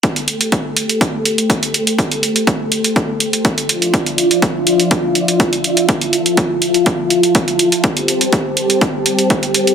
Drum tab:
HH |xxxxx-xxx-xxxxxx|xxxxx-xxx-xxxxxx|xxxxx-xxx-xxxxxx|xxxxx-xxx-xxxxxx|
BD |o---o---o---o---|o---o---o---o---|o---o---o---o---|o---o---o---o---|

HH |xxxxx-xxx-xxxxxx|
BD |o---o---o---o---|